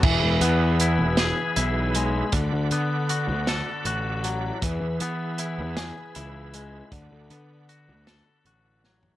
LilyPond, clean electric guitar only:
\new Staff \with { instrumentName = "Clean electric guitar" } { \time 6/8 \key e \mixolydian \tempo 4. = 52 e8 b8 e'8 gis'8 e'8 gis8 | d8 b8 fis'8 a'8 fis'8 fis8 | e8 b8 e'8 gis'8 e'8 gis8 | d8 b8 fis'8 a'8 fis'8 fis8 | }